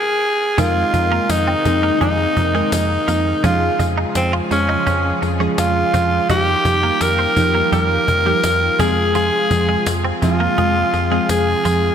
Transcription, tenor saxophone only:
0.00 0.60 G#4 loud
0.59 1.32 F4 loud
1.31 2.02 D#4 loud
2.02 2.69 D#4 loud
2.73 3.40 D#4 medium
3.45 3.86 F4 medium
4.17 4.33 C4 medium
4.52 5.19 C#4 medium
5.59 6.26 F4 loud
6.30 7.03 G4 loud
7.02 7.73 A#4 loud
7.73 8.82 A#4 loud
8.81 9.15 G#4 loud
9.16 9.92 G#4 loud
10.23 11.26 F4 loud
11.31 11.95 G#4 loud

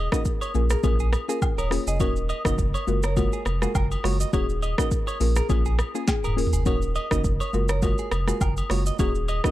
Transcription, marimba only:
0.13 0.24 A#4 medium
0.55 0.68 A#4 medium
0.71 0.82 G#4 medium
0.84 0.98 A#4 medium
1.29 1.40 A#4 medium
1.58 1.69 C#5 medium
1.88 1.99 D#5 medium
2.01 2.14 A#4 loud
2.46 2.57 A#4 medium
2.88 3.02 A#4 medium
3.04 3.15 C#5 medium
3.17 3.31 A#4 medium
3.63 3.73 A#4 medium
4.34 4.47 G#4 medium
4.79 4.90 A#4 medium
5.21 5.34 A#4 medium
5.37 5.48 G#4 medium
6.08 6.22 G#4 medium
6.38 6.51 A#4 medium
6.67 6.80 A#4 medium
7.12 7.23 A#4 medium
7.54 7.68 A#4 medium
7.70 7.81 C#5 medium
7.83 7.97 A#4 loud
8.28 8.39 A#4 medium
9.00 9.13 G#4 loud
9.45 9.51 A#4 medium

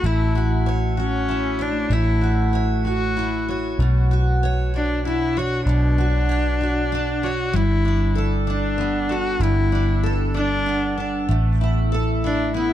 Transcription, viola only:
0.05 0.67 E4 medium
1.00 1.63 C#4 medium
1.62 1.94 D4 medium
1.92 2.54 E4 medium
2.87 3.52 F#4 medium
4.76 5.04 D4 medium
5.07 5.39 E4 medium
5.38 5.68 F#4 medium
5.69 7.25 D4 medium
7.24 7.57 F#4 medium
7.56 8.17 E4 medium
8.49 9.12 D4 medium
9.11 9.43 F#4 medium
9.42 10.04 E4 medium
10.36 11.03 D4 medium
12.26 12.54 D4 medium
12.57 12.73 E4 medium

